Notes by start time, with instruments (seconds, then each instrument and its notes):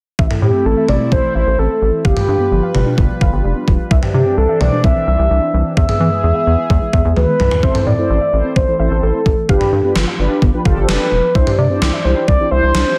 0.19 analog synth bass A1, analog synth pad A3 C4 E4, synth pluck E5, kick
0.30 synth pluck A4, mid tom
0.42 analog synth bass A2, synth pluck C4, soft synth lead G4
0.54 synth pluck A3
0.65 analog synth bass A1, synth pluck E3, soft synth lead A4
0.77 synth pluck E5
0.89 analog synth bass A1, soft synth lead D5, mid tom
1.00 synth pluck C4
1.12 analog synth bass A1, synth pluck A3, soft synth lead C5, kick
1.24 synth pluck E3
1.35 analog synth bass A1, soft synth lead C5, synth pluck E5
1.47 analog synth bass A1, synth pluck A4
1.58 analog synth bass A1, synth pluck C4, soft synth lead A4
1.70 synth pluck A3
1.82 analog synth bass A1, synth pluck E3
2.05 analog synth bass G1, analog synth pad G3 F4 B4, soft synth lead G4, synth pluck F5, kick
2.17 synth pluck G4, mid tom
2.28 analog synth bass G2, synth pluck D4
2.40 synth pluck B3
2.51 analog synth bass G1, synth pluck F3
2.63 synth pluck F5
2.75 analog synth bass G1, mid tom
2.86 synth pluck D4
2.98 analog synth bass G1, synth pluck B3, kick
3.10 synth pluck F3
3.21 analog synth bass G1, synth pluck F5, kick
3.33 analog synth bass G1, synth pluck G4
3.44 analog synth bass F1, synth pluck D4
3.56 synth pluck B3
3.68 analog synth bass E1, synth pluck F3, kick
3.91 analog synth bass C2, analog synth pad E3 C4 D4, synth pluck E5, kick
4.03 synth pluck G4, mid tom
4.14 analog synth bass C3, synth pluck D4, soft synth lead G4
4.26 synth pluck C4
4.37 analog synth bass C2, synth pluck E3, soft synth lead A4
4.49 synth pluck E5
4.61 analog synth bass C2, soft synth lead D5, mid tom
4.72 synth pluck D4
4.84 analog synth bass C2, synth pluck C4, soft synth lead E5, kick
4.96 synth pluck E3
5.07 analog synth bass C2, synth pluck E5
5.19 analog synth bass C2, synth pluck G4
5.30 analog synth bass C2, synth pluck D4
5.42 synth pluck C4
5.54 analog synth bass C2, synth pluck E3
5.77 analog synth bass E2, analog synth pad B3 G#4, soft synth lead E5, synth pluck E5, kick
5.89 synth pluck G#4, mid tom
6.00 analog synth bass E3, synth pluck B3
6.12 synth pluck G#3
6.24 analog synth bass E2, synth pluck E3
6.35 synth pluck E5
6.47 analog synth bass E2
6.58 synth pluck B3
6.70 analog synth bass E2, synth pluck G#3, kick
6.82 synth pluck E3
6.93 analog synth bass E2, synth pluck E5, kick
7.05 analog synth bass E2, synth pluck G#4
7.16 analog synth bass D2, synth pluck B3, soft synth lead B4, high tom
7.28 synth pluck G#3
7.40 analog synth bass C2, synth pluck E3, mid tom
7.51 floor tom
7.63 analog synth bass A1, analog polysynth C4 E4 A4 C5, soft synth lead C5, synth pluck E5, kick
7.75 synth pluck A4, mid tom
7.86 analog synth bass A2, synth pluck C4, soft synth lead D5
7.98 synth pluck A3, analog polysynth C4 E4 A4 C5
8.10 analog synth bass A1, synth pluck E3
8.21 synth pluck E5
8.33 analog synth bass A1, analog polysynth C4 E4 A4 C5
8.44 synth pluck C4
8.56 analog synth bass A1, synth pluck A3, soft synth lead C5, kick
8.68 synth pluck E3, analog polysynth C4 E4 A4 C5
8.79 analog synth bass A1, analog polysynth C4 E4 A4 C5, synth pluck E5
8.91 analog synth bass A1, synth pluck A4
9.03 analog synth bass A1, synth pluck C4, soft synth lead A4
9.14 synth pluck A3
9.26 analog synth bass A1, synth pluck E3, kick
9.49 analog synth bass G1, analog polysynth D4 F4 G4 B4, soft synth lead G4, synth pluck F5, kick
9.61 synth pluck G4, mid tom
9.72 analog synth bass G2, synth pluck D4
9.84 synth pluck B3, analog polysynth D4 F4 G4 B4
9.96 analog synth bass G1, synth pluck F3, snare
10.07 synth pluck F5
10.19 analog synth bass G1, analog polysynth D4 F4 G4 B4
10.31 synth pluck D4
10.42 analog synth bass G1, synth pluck B3, kick
10.54 synth pluck F3, analog polysynth D4 F4 G4 B4
10.65 analog synth bass G1, analog polysynth D4 F4 G4 A4, synth pluck F5, kick
10.77 analog synth bass G1, synth pluck G4
10.82 soft synth lead C5
10.88 analog synth bass F1, synth pluck D4, soft synth lead B4, snare
11.00 synth pluck B3
11.12 analog synth bass E1, synth pluck F3
11.35 analog synth bass C2, analog polysynth D4 E4 G4 C5, soft synth lead C5, synth pluck E5, kick
11.47 synth pluck G4, mid tom
11.58 analog synth bass C3, synth pluck D4, soft synth lead D5
11.70 synth pluck C4, analog polysynth D4 E4 G4 C5
11.82 analog synth bass C2, synth pluck E3, snare
11.93 synth pluck E5
12.05 analog synth bass C2, analog polysynth D4 E4 G4 C5, soft synth lead C5
12.17 synth pluck D4
12.28 analog synth bass C2, synth pluck C4, soft synth lead D5, kick
12.40 synth pluck E3, analog polysynth D4 E4 G4 C5
12.51 analog synth bass C2, analog polysynth D4 E4 G4 C5, soft synth lead C5, synth pluck E5
12.63 analog synth bass C2, synth pluck G4
12.75 analog synth bass C2, synth pluck D4, snare
12.86 synth pluck C4